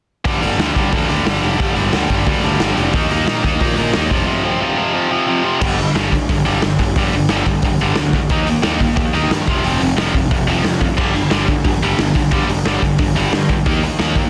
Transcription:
0.25 G1 G2 D3 G3, kick, open hi-hat
0.41 G1 G2 D3 G3, open hi-hat
0.58 D2 G2 D3 G3, snare, open hi-hat
0.75 G1 G2 D3 G3, kick, open hi-hat
0.92 D2 G2 D3 G3, kick, open hi-hat
1.09 D2 G2 D3 G3, open hi-hat
1.25 G1 G2 D3 G3, snare, open hi-hat
1.41 F1 G2 D3 G3, open hi-hat
1.58 G1 G2 D3 G3, kick, open hi-hat
1.75 G1 G2 D3 G3, open hi-hat
1.92 D2 G2 D3 G3, snare, open hi-hat
2.09 G1 G2 D3 G3, kick, open hi-hat
2.26 D2 G2 D3 G3, kick, open hi-hat
2.43 D2 G2 D3 G3, open hi-hat
2.60 G1 G2 D3 G3, snare, open hi-hat
2.76 F1 G2 D3 G3, open hi-hat
2.93 D#2 D#3 A#3 D#4, kick, open hi-hat
3.10 D#2 D#3 A#3 D#4, open hi-hat
3.26 A#2 D#3 A#3 D#4, snare, open hi-hat
3.43 D#2 D#3 A#3 D#4, kick, open hi-hat
3.60 A#2 D#3 A#3 D#4, kick, open hi-hat
3.76 A#2 D#3 A#3 D#4, open hi-hat
3.93 D#2 D#3 A#3 D#4, snare, open hi-hat
4.10 F1 F2 C3 F3, kick, open hi-hat
4.27 F2 C3 F3
4.44 F2 C3 F3
4.61 F2 C3 F3
4.77 F2 C3 F3
4.94 F2 C3 F3
5.11 F2 C3 F3
5.27 F2 C3 F3
5.43 F2 C3 F3
5.59 G1 G2 D3 G3, kick, crash
5.78 G2 D3, open hi-hat
5.95 G1 G2 D3 G3, snare, open hi-hat
6.12 G2 D3, kick, open hi-hat
6.29 G1 G2 D3, kick, open hi-hat
6.45 G1 G2 D3 G3, open hi-hat
6.62 G1 G2 D3, snare, open hi-hat
6.79 G1 G2 D3, kick, open hi-hat
6.96 G1 G2 D3 G3, kick, open hi-hat
7.13 G1 G2 D3, open hi-hat
7.29 G1 G2 D3 G3, snare, open hi-hat
7.46 G1 G2 D3, kick, open hi-hat
7.62 G1 G2 D3, kick, open hi-hat
7.79 G1 G2 D3 G3, open hi-hat
7.96 D2 G2 D3, snare, open hi-hat
8.13 G2 D3, kick, open hi-hat
8.29 D#2 D#3 A#3 D#4, kick, open hi-hat
8.47 D#3 A#3, open hi-hat
8.62 D#2 D#3 A#3 D#4, snare, open hi-hat
8.79 D#3 A#3, kick, open hi-hat
8.96 D#2 D#3 A#3, kick, open hi-hat
9.13 D#2 D#3 A#3 D#4, open hi-hat
9.31 G2 D#3 A#3, snare, open hi-hat
9.47 F1 F2 C3 F3, kick, open hi-hat
9.64 F1 F2 C3 F3, open hi-hat
9.81 F1 F2 C3, open hi-hat
9.97 F1 F2 C3 F3, snare, open hi-hat
10.14 F1 F2 C3, kick, open hi-hat
10.31 F1 F2 C3, kick, open hi-hat
10.47 F1 F2 C3 F3, open hi-hat
10.64 F2 C3, snare, open hi-hat
10.81 F2 C3, kick, open hi-hat
10.97 G1 G2 D3 G3, kick, crash
11.14 G2 D3, open hi-hat
11.30 G1 G2 D3 G3, snare, open hi-hat
11.47 G2 D3, kick, open hi-hat
11.64 G1 G2 D3, kick, open hi-hat
11.81 G1 G2 D3 G3, open hi-hat
11.98 G1 G2 D3, snare, open hi-hat
12.15 G1 G2 D3, kick, open hi-hat
12.31 G1 G2 D3 G3, kick, open hi-hat
12.48 G1 G2 D3, open hi-hat
12.65 G1 G2 D3 G3, snare, open hi-hat
12.82 G1 G2 D3, kick, open hi-hat
12.98 G1 G2 D3, kick, open hi-hat
13.16 G1 G2 D3 G3, open hi-hat
13.32 G2 D3, snare, open hi-hat
13.49 G2 D3, kick, open hi-hat
13.66 D#2 D#3 A#3 D#4, kick, open hi-hat
13.83 D#3 A#3, open hi-hat
13.99 D#2 D#3 A#3 D#4, snare, open hi-hat
14.16 D#3 A#3, kick, open hi-hat

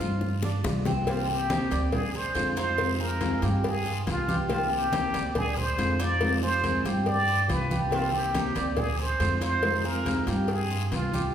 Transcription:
Already playing: F4
0.00 G2 G#3 C4 F4, high bongo, high conga, short guiro
0.21 muted nylon-string guitar stroke, high bongo, high conga, long guiro
0.43 D4, low bongo, high conga
0.64 C2 G3 B3 F4, low bongo, high conga, short guiro
0.85 B3 C4 F4, low bongo, high conga, short guiro
1.07 C3 D#3 A#3 C4 F4 G4, cowbell, high conga, long guiro
1.28 A#3 C4 G4, high conga
1.50 C3 D#3 A#3 C4 D#4 G4, cowbell, high conga, short guiro
1.71 D2 A#3 C4 G4 D5, cowbell, high conga, short guiro
1.92 G#4, muted nylon-string guitar stroke, cowbell, high conga, low conga, long guiro
2.14 G#4 C5, high conga
2.35 F2 D3 G#3 C4 F4, cowbell, high conga, short guiro
2.56 G#3 C4 D#4 F4 C5, cowbell, high conga, short guiro
2.78 C3 D#3 G#3 C4 F4, cowbell, high conga, long guiro
3.00 G#3 C4 F4 G#4 A#4, high conga
3.20 C3 D#3 G#3 C4 F4, cowbell, high conga, short guiro
3.42 G2 G#3 C4 F4 G4, cowbell, high conga, short guiro
3.63 G#4, muted nylon-string guitar stroke, cowbell, high conga, long guiro
3.86 F4, high conga
4.05 C2 G3 B3 F4, cowbell, high conga, short guiro
4.28 B3 F4 G4, high conga, short guiro
4.49 C3 D#3 A#3 C4 F4 G4, cowbell, high conga, long guiro
4.70 A#3 C4 G4, high conga
4.91 C3 D#3 A#3 C4 D#4 G4, cowbell, high conga, short guiro
5.13 D2 A#3 C4 G4 D5, cowbell, high conga, short guiro
5.35 G#4, muted nylon-string guitar stroke, cowbell, high conga, low conga, long guiro
5.57 G#4 C5, high conga, low conga
5.77 F2 D3 G#3 C4 F4, cowbell, high conga, short guiro
6.00 G#3 C4 D#4 F4 D5, cowbell, high conga, short guiro
6.20 C3 D#3 G#3 C4 F4, cowbell, high conga, long guiro
6.42 G#3 C4 F4 G#4 C5, high conga
6.63 C3 D#3 G#3 C4 F4, cowbell, high conga, short guiro
6.84 G2 G#3 C4 F4 G4, cowbell, high conga, short guiro
7.06 D5, muted nylon-string guitar stroke, cowbell, high conga, long guiro
7.28 F4, high conga
7.48 C2 G3 B3 F4 B4, cowbell, high conga, short guiro
7.69 B3 F4 G4, high conga, short guiro
7.90 C3 D#3 A#3 C4 F4 G4, cowbell, high conga, long guiro
8.13 A#3 C4 G4, high conga
8.34 C3 D#3 A#3 C4 D#4 G4, cowbell, high conga, short guiro
8.55 D2 A#3 C4 G4 D5, cowbell, high conga, short guiro
8.76 G#4, muted nylon-string guitar stroke, cowbell, high conga, low conga, long guiro
8.99 G#4 C5, high conga
9.19 F2 D3 G#3 C4 F4, cowbell, high conga, short guiro
9.40 G#3 C4 D#4 F4 C5, cowbell, high conga, short guiro
9.62 C3 D#3 G#3 C4 F4, cowbell, high conga, long guiro
9.84 G#3 C4 F4 G#4 A#4, high conga
10.05 C3 D#3 G#3 C4 F4, cowbell, high conga, short guiro
10.27 G2 G#3 C4 F4 G4, cowbell, high conga, short guiro
10.48 G#4, muted nylon-string guitar stroke, cowbell, high conga, long guiro
10.70 F4, high conga
10.91 C2 G3 B3 F4, cowbell, high conga, short guiro
11.12 B3 F4 G4, high conga, short guiro

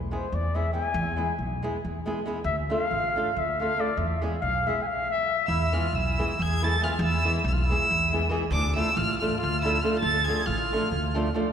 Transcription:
Already playing: B1
0.11 G#3 B3 E4 G#4 C5
0.32 E2 D5
0.54 G#3 B3 E4 G#4 E5
0.73 G#3 B3 E4 G#4 G#5
0.94 E2
1.17 G#3 B3 E4 G#4
1.39 B1
1.63 G#3 B3 E4 G#4
1.85 E2
2.06 G#3 B3 E4 G#4
2.26 G#3 B3 E4 G#4
2.44 D2 E5
2.69 A3 D4 F4 A4 F5
2.91 A1
3.16 A3 D4 F4 A4
3.36 D2 E5
3.60 A3 D4 F4 A4 F5
3.77 A3 D4 F4 A4 D5
3.97 E2 E5
4.22 G#3 B3 E4 G#4
4.41 B1 F5
4.67 G#3 B3 E4 G#4 E5
4.82 G#5
4.87 F5
5.11 E5
5.47 E2 E4 E6
5.72 E3 G#3 B3 E4 G#4 F6
5.76 F4
5.93 B1 E4 E6
6.18 E3 G#3 B3 E4 G#4
6.39 E2 G#4 G#6
6.62 E3 G#3 B3 E4 G#4 A4 A6
6.81 E3 G#3 B3 E4 F4 G#4 F6
6.99 E2
7.04 E4 E6
7.24 E3 G#3 B3 E4 G#4
7.44 B1 E6
7.49 E4 F6
7.54 F4
7.63 E4 E6
7.69 E3 G#3 B3 E4 G#4
7.91 E2
8.12 E3 G#3 B3 E4 G#4
8.29 E3 G#3 B3 E4 G#4
8.51 D2 D4 D6
8.76 F3 A3 D4 E4 F4 A4 E6
8.92 F4
8.97 A1 F6
9.19 F3 A3 D4 F4 F6
9.23 A4
9.38 F4 F6
9.43 D2
9.61 F3 A3 D4 E4 E6
9.66 F4 A4
9.81 F3 A3 D4 F4 A4 F6
10.00 D2 A4 A6
10.24 F3 A3 D4 G#4 G#6
10.29 F4 A4
10.46 A1 F4 F6
10.73 F3 A3 D4 F4 A4
10.92 D2
11.14 F3 A3 D4 F4 A4
11.34 F3 A3 D4 F4 A4

